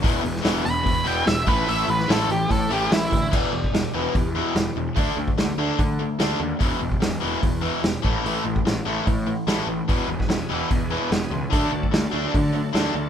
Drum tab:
CC |----------------|----------------|x---------------|----------------|
HH |o-o-o-o-o-o-o-o-|o-o-o-o-o-o-o-o-|----o---o---o---|o---o---o---o---|
SD |---oo-------o---|---oo-------o---|----o-------o---|----o-------o---|
BD |o-------o-----o-|--------o-----o-|o--o----o-------|o--o----o-------|

CC |----------------|----------------|----------------|----------------|
HH |o---o---o---o---|o---o---o---o---|o---o---o---o---|o---o---o---o---|
SD |----o-------o---|----o-------o---|---oo-------o---|----o-------o---|
BD |o--o----o-----o-|---o----o-------|o--o----o-------|o--o----o-------|